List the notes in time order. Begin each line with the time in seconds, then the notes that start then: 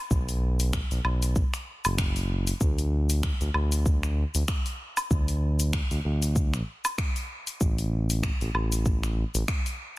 0.11 B1, kick, shaker
0.29 open hi-hat, shaker
0.60 open hi-hat, shaker
0.73 finger snap, kick, shaker
0.91 B1, open hi-hat, shaker
1.05 B1, low woodblock
1.23 open hi-hat, shaker
1.36 kick, shaker
1.54 finger snap, open hi-hat, shaker
1.85 F#1, open hi-hat, low woodblock, shaker
1.98 finger snap, kick, shaker
2.16 open hi-hat, shaker
2.47 open hi-hat, shaker
2.61 D2, kick, shaker
2.78 open hi-hat, shaker
3.10 open hi-hat, shaker
3.23 finger snap, kick, shaker
3.41 D2, open hi-hat, shaker
3.54 D2, low woodblock
3.72 open hi-hat, shaker
3.86 kick, shaker
4.03 finger snap, shaker
4.35 D2, open hi-hat, shaker
4.48 finger snap, kick, shaker
4.66 open hi-hat, shaker
4.97 open hi-hat, low woodblock, shaker
5.11 D2, kick, shaker
5.28 open hi-hat, shaker
5.60 open hi-hat, shaker
5.73 finger snap, kick, shaker
5.91 D2, open hi-hat, shaker
6.05 D2
6.22 open hi-hat, shaker
6.36 kick, shaker
6.54 A1, finger snap, shaker
6.85 open hi-hat, low woodblock, shaker
6.98 finger snap, kick, shaker
7.16 open hi-hat, shaker
7.47 open hi-hat, shaker
7.61 A1, kick, shaker
7.78 open hi-hat, shaker
8.10 open hi-hat, shaker
8.23 finger snap, kick, shaker
8.41 A1, open hi-hat, shaker
8.54 A1, low woodblock
8.72 open hi-hat, shaker
8.86 kick, shaker
9.03 finger snap, shaker
9.35 A1, open hi-hat, shaker
9.48 finger snap, kick, shaker
9.66 open hi-hat, shaker